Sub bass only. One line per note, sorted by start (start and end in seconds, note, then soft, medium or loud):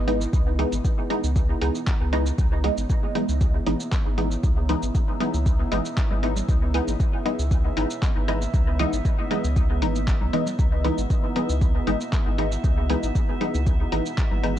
0.00 0.27 G#1 medium
0.33 0.65 C#2 loud
0.72 0.80 G#1 medium
1.24 1.55 C#2 loud
1.61 1.70 C#2 loud
2.00 2.32 C#2 medium
2.38 2.70 C#2 loud
2.77 2.86 G#1 medium
3.29 3.60 C#2 loud
3.67 3.75 G#1 medium
4.06 4.37 G#1 medium
4.44 4.75 C#2 loud
4.83 4.91 G#1 medium
5.34 5.65 C#2 loud
5.72 5.81 G#1 medium
6.11 6.42 G#1 medium
6.49 6.80 C#2 loud
6.88 6.96 G#1 loud
7.39 7.70 C#2 loud
7.77 7.86 G#1 medium
8.16 8.47 G#1 medium
8.54 8.86 C#2 loud
8.93 9.01 G#1 medium
9.44 9.84 C#2 loud
9.82 10.23 G#1 loud
10.21 10.29 C#2 medium
10.59 10.91 C#2 loud
10.98 11.06 G#1 medium
11.49 11.80 C#2 loud
11.87 11.96 G#1 medium
12.26 12.57 G#1 medium
12.64 12.96 C#2 loud
13.03 13.11 G#1 medium
13.54 13.86 C#2 loud
13.92 14.01 G#1 medium
14.31 14.59 G#1 medium